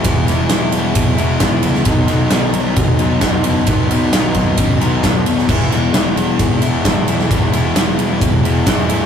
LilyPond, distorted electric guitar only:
\new Staff \with { instrumentName = "Distorted electric guitar" } { \time 4/4 \key e \major \tempo 4 = 132 <e gis b e'>8 <gis b e'>8 <e gis b e'>4. <gis b e'>8 <e gis b e'>8 <gis b e'>8 | <b, dis fis b dis'>8 <fis b dis'>8 <dis fis b dis'>4. <fis b dis'>8 <b, dis fis b dis'>8 <fis b dis'>8 | <b, dis fis b dis'>8 <fis b dis'>8 <dis fis b dis'>4. <fis b dis'>8 <b, dis fis b dis'>8 <fis b dis'>8 | <e gis b e'>8 <gis b e'>8 <e gis b e'>4. <gis b e'>8 <e gis b e'>8 <gis b e'>8 |
<e gis b e'>8 <gis b e'>8 <e gis b e'>4. <gis b e'>8 <e gis b e'>8 <gis b e'>8 | }